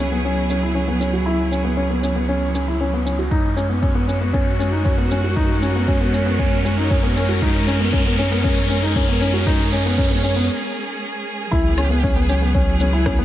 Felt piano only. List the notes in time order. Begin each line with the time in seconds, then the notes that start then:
0.12 B3
0.25 C#4
0.50 C#4
0.63 E4
0.75 C#4
0.88 B3
1.00 C#4
1.13 F#4
1.26 E4
1.52 C#4
1.64 B3
1.77 C#4
1.90 B3
2.03 C#4
2.16 B3
2.29 C#4
2.55 C#4
2.68 E4
2.81 C#4
2.93 B3
3.06 C#4
3.19 F#4
3.31 D#4
3.57 C#4
3.69 B3
3.82 C#4
3.95 B3
4.08 C#4
4.21 B3
4.33 C#4
4.59 C#4
4.72 D#4
4.85 C#4
4.98 B3
5.11 C#4
5.24 F#4
5.36 D#4
5.62 C#4
5.76 B3
5.88 C#4
6.01 B3
6.14 C#4
6.26 B3
6.39 C#4
6.65 C#4
6.78 D#4
6.90 C#4
7.03 B3
7.16 C#4
7.29 F#4
7.42 D#4
7.68 C#4
7.80 B3
7.93 C#4
8.06 B3
8.19 C#4
8.32 B3
8.44 C#4
8.70 C#4
8.83 D#4
8.96 C#4
9.08 B3
9.21 C#4
9.34 F#4
9.47 D#4
9.72 C#4
9.86 B3
9.98 C#4
10.11 B3
10.24 C#4
10.36 B3
11.52 E4
11.78 C#4
11.90 B3
12.03 C#4
12.16 B3
12.29 C#4
12.42 B3
12.55 C#4
12.81 C#4
12.93 E4
13.06 C#4
13.19 B3